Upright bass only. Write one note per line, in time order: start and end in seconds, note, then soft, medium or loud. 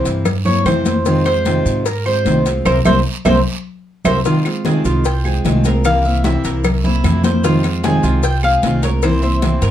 0.05 0.61 G2 medium
0.65 1.60 F2 loud
1.65 2.22 G#2 medium
2.25 2.63 C2 medium
2.66 2.81 C2 loud
2.86 3.01 C2 loud
3.25 3.40 C2 loud
4.05 4.20 C2 medium
4.85 5.41 C2 loud
5.45 6.38 C2 medium
6.44 7.00 C2 medium
7.04 7.97 F2 medium
8.03 8.59 C2 loud
8.63 9.56 C2 medium
9.62 9.71 G2 medium